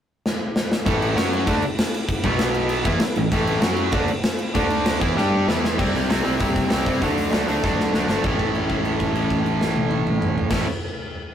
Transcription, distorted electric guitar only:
0.86 1.16 A2 medium
0.86 1.16 E3 loud
0.86 1.16 A3 loud
1.16 1.46 F#3 loud
1.16 1.47 C#4 loud
1.16 1.47 F#4 loud
1.47 1.62 D3 loud
1.47 1.62 A3 loud
1.47 1.63 D4 loud
2.24 2.84 B2 medium
2.24 2.84 F#3 loud
2.24 2.83 B3 medium
2.84 3.00 E3 medium
2.84 3.00 B3 loud
2.84 3.00 E4 medium
3.02 muted distorted electric guitar stroke medium
3.17 3.29 A2 medium
3.17 3.29 E3 medium
3.32 3.61 A2 loud
3.32 3.62 E3 loud
3.32 3.63 A3 loud
3.62 3.93 F#3 loud
3.62 3.93 C#4 loud
3.62 3.93 F#4 loud
3.93 4.08 D3 loud
3.93 4.09 A3 loud
3.93 4.09 D4 loud
4.55 5.01 D3 medium
4.55 5.01 A3 loud
4.55 5.02 D4 loud
5.01 5.17 E3 medium
5.01 5.15 B3 loud
5.01 5.16 E4 loud
5.15 5.47 G3 loud
5.15 5.48 D4 loud
5.15 5.48 G4 loud
5.48 5.78 E3 medium
5.48 5.78 B3 loud
5.48 5.79 E4 loud
5.78 6.08 C3 loud
5.78 6.09 G3 loud
5.78 6.10 C4 loud
6.09 6.25 C3 medium
6.09 6.23 G3 medium
6.09 6.23 C4 medium
6.24 6.39 C3 medium
6.24 6.40 G3 medium
6.24 6.40 C4 medium
6.40 6.69 C3 loud
6.40 6.70 G3 loud
6.40 6.70 C4 loud
6.70 6.85 C3 medium
6.70 6.85 G3 medium
6.70 6.85 C4 medium
6.86 7.01 C3 medium
6.86 7.01 G3 medium
6.86 7.01 C4 medium
7.01 7.30 D3 loud
7.01 7.31 A3 medium
7.01 7.32 D4 loud
7.31 7.48 D3 medium
7.31 7.47 A3 loud
7.31 7.47 D4 medium
7.48 7.62 D3 medium
7.48 7.62 A3 medium
7.48 7.63 D4 medium
7.63 7.93 D3 loud
7.63 7.93 A3 loud
7.63 7.94 D4 loud
7.94 8.09 D3 medium
7.94 8.09 A3 medium
7.94 8.08 D4 medium
8.09 8.23 D3 medium
8.09 8.24 A3 medium
8.09 8.23 D4 medium
8.23 10.49 A2 medium
8.23 10.51 E3 medium
8.23 10.53 A3 loud
10.50 10.64 A2 medium
10.50 10.65 E3 loud
10.50 10.66 A3 medium

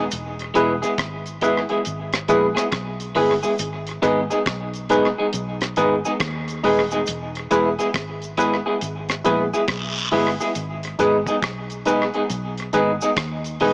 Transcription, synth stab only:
0.55 0.73 E4 medium
0.55 0.73 G#4 medium
0.55 0.74 B4 loud
1.42 1.60 E4 loud
1.42 1.60 G#4 medium
1.42 1.61 B4 loud
2.29 2.47 E4 medium
2.29 2.47 G#4 medium
2.29 2.47 B4 loud
3.16 3.34 E4 medium
3.16 3.34 G#4 medium
3.16 3.34 B4 loud
4.02 4.20 D#4 medium
4.02 4.21 G#4 medium
4.02 4.21 B4 loud
4.90 5.08 D#4 loud
4.90 5.08 G#4 medium
4.90 5.08 B4 loud
5.77 5.95 D#4 loud
5.77 5.95 G#4 medium
5.77 5.95 B4 loud
6.63 6.82 D#4 medium
6.63 6.82 G#4 medium
6.63 6.82 B4 loud
7.51 7.69 E4 medium
7.51 7.69 G#4 medium
7.51 7.69 B4 loud
8.38 8.56 E4 loud
8.38 8.56 G#4 medium
8.38 8.56 B4 loud
9.24 9.43 E4 medium
9.24 9.43 G#4 medium
9.24 9.43 B4 loud
10.12 10.30 E4 medium
10.12 10.30 G#4 medium
10.12 10.30 B4 loud
10.99 11.17 D#4 medium
10.99 11.17 G#4 medium
10.99 11.17 B4 loud
11.86 12.04 D#4 medium
11.86 12.04 G#4 medium
11.86 12.04 B4 loud
12.73 12.91 D#4 medium
12.73 12.91 G#4 medium
12.73 12.92 B4 loud
13.61 13.73 D#4 medium
13.61 13.73 G#4 medium
13.61 13.73 B4 loud

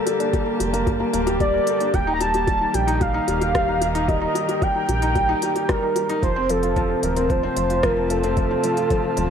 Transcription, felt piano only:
0.00 0.06 G3 medium
0.00 0.47 A#3 loud
0.00 0.20 D4 medium
0.06 0.19 G3 medium
0.20 0.33 D4 medium
0.33 0.41 G3 medium
0.47 0.54 A#3 medium
0.60 0.68 G3 medium
0.73 0.81 A#3 medium
0.87 0.94 G3 medium
1.00 1.12 A#3 medium
1.13 1.21 A#3 medium
1.27 1.40 G4 medium
1.40 1.53 G3 medium
1.54 1.67 A#4 medium
1.67 1.80 A4 medium
1.81 1.93 D4 medium
1.94 2.02 G3 medium
2.07 2.20 D#4 medium
2.21 2.33 G3 medium
2.34 2.47 G4 medium
2.47 2.55 G3 medium
2.61 2.69 D#4 medium
2.74 2.82 G3 medium
2.87 2.95 D#4 medium
3.01 3.09 G3 medium
3.14 3.27 D#4 loud
3.28 3.41 G3 medium
3.41 3.54 G4 medium
3.54 3.62 G3 medium
3.68 3.76 D#4 medium
3.81 3.89 G3 medium
3.95 4.03 D#4 loud
4.08 4.16 G3 medium
4.21 4.34 D#4 loud
4.35 4.48 G3 medium
4.48 4.61 G4 medium
4.62 4.69 G3 medium
4.75 4.83 D#4 medium
4.89 4.97 G3 medium
5.02 5.10 D#4 loud
5.16 5.23 G3 medium
5.29 5.42 D#4 loud
5.42 5.55 G3 medium
5.56 5.68 G4 medium
5.69 5.77 G3 loud
5.83 5.90 D#4 medium
5.96 6.04 G3 medium
6.09 6.17 D#4 loud
6.23 6.30 F3 medium
6.36 6.49 C4 medium
6.50 6.62 F3 medium
6.63 6.76 F4 medium
6.76 6.84 F3 loud
6.90 6.97 C4 medium
7.03 7.11 F3 medium
7.17 7.24 C4 medium
7.30 7.38 F3 medium
7.43 7.56 C4 medium
7.57 7.69 F3 medium
7.70 7.83 F4 medium
7.83 7.91 F3 loud
7.97 8.04 C4 medium
8.10 8.18 F3 medium
8.24 8.31 C4 medium
8.37 8.45 F3 medium
8.51 8.63 C4 medium
8.64 8.77 F3 medium
8.78 8.90 F4 medium
8.91 8.98 F3 medium
9.04 9.12 C4 medium
9.17 9.25 F3 medium

